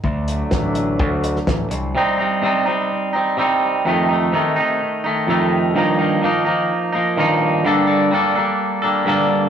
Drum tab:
HH |--x---x---x---x-|----------------|----------------|----------------|
SD |----o------oo---|----------------|----------------|----------------|
BD |o---o---o---o---|----------------|----------------|----------------|

HH |----------------|
SD |----------------|
BD |----------------|